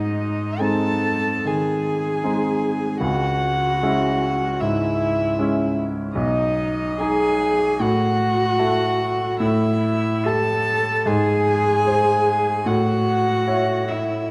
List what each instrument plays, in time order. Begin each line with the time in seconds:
Already playing: grand piano G#2, cello D#4, violin D#5
0.60 grand piano G#3 C4 D#4, cello A4, violin A5
1.45 grand piano D#3, cello G#4, violin G#5
2.24 grand piano G#3 C4 D#4
3.01 grand piano C#2, cello F#4, violin F#5
3.83 grand piano G#3 C#4 E4
4.61 grand piano G#2, cello E4, violin E5
5.39 grand piano G#3 C#4 E4
6.15 grand piano B1, cello D#4, violin D#5
7.00 grand piano D#4 G#4, cello G#4, violin G#5
7.80 grand piano A2, cello F#4, violin F#5
8.59 grand piano E4 A4
9.40 grand piano A2, cello E4, violin E5
10.25 grand piano G4 A4, cello A4, violin A5
11.06 grand piano G#2, cello G#4, violin G#5
11.86 grand piano G#4 C5
12.66 grand piano A2, cello F#4, violin F#5
13.47 grand piano E4 C#5
13.88 cello E4, violin E5